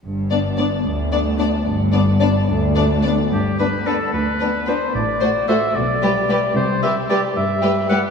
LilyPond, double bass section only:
\new Staff \with { instrumentName = "Double bass section" } { \clef bass \time 6/8 \key g \major \tempo 4. = 74 g,,4. d,4. | g,,4. d,4. | g,,4 r2 | a,,4 r8 b,,4 r8 |
c,4 r2 | }